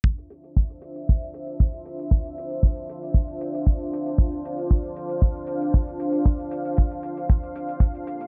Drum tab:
HH |xxxxxxxxxxxxxxxx|xxxxxxxxxxxxxxxx|xxxxxxxxxxxxxxxx|xxxxxxxxxxxxxxxx|
BD |o---o---o---o---|o---o---o---o---|o---o---o---o---|o---o---o---o---|